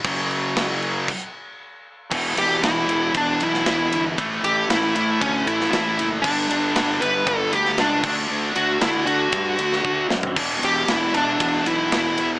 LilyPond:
<<
  \new Staff \with { instrumentName = "Lead electric guitar" } { \time 4/4 \key e \dorian \tempo 4 = 116 r1 | r8 g'8 e'4 d'8 e'8 e'8. r16 | r8 g'8 e'8 e'8 cis'8 e'8 e'8. r16 | d'4. b'8 a'8 g'8 d'8. r16 |
r8 fis'8 e'8 fis'2 r8 | r8 g'8 e'8 d'4 e'8 e'8. r16 | }
  \new Staff \with { instrumentName = "Distorted electric guitar" } { \clef bass \time 4/4 \key e \dorian <fis, cis fis>2 r2 | <e, b, e>1 | <a, e a>1 | <g, d g>2.~ <g, d g>8 <d a d'>8~ |
<d a d'>2.~ <d a d'>8 r8 | <e, b, e>1 | }
  \new Staff \with { instrumentName = "Fingered electric bass" } { \clef bass \time 4/4 \key e \dorian fis,,2 r2 | e,,8 e,,8 e,,8 e,,8 e,,8 b,,8 e,,8 g,,8 | a,,8 a,,8 a,,8 a,8 d,8 a,,8 a,,8 fis,,8 | g,,8 g,,8 g,,8 g,,8 g,,8 d,8 cis,8 d,8 |
d,8 d,8 d,8 d8 g,8 d,8 d,8 fis,8 | e,,8 e,,8 e,,8 e,,8 e,,8 b,,8 e,,8 e,8 | }
  \new DrumStaff \with { instrumentName = "Drums" } \drummode { \time 4/4 <cymc bd>8 cymc8 <cymc sn>8 cymc8 <cymc bd>4 r4 | <cymc bd>8 cymr8 <cymr sn>8 cymr8 <bd cymr>8 cymr16 sn16 <cymr sn>8 cymr8 | <bd cymr>8 cymr8 <cymr sn>8 cymr8 <bd cymr>8 cymr16 sn16 <cymr sn>8 cymr8 | <cymc bd>8 cymr8 <cymr sn>8 cymr8 <bd cymr>8 cymr16 sn16 <cymr sn>8 <cymc bd>8 |
r8 cymr8 <cymr sn>8 cymr8 <bd cymr>8 cymr16 sn16 bd8 sn16 tomfh16 | <cymc bd>8 cymr8 <cymr sn>8 cymr8 <bd cymr>8 cymr8 <cymr sn>8 cymr8 | }
>>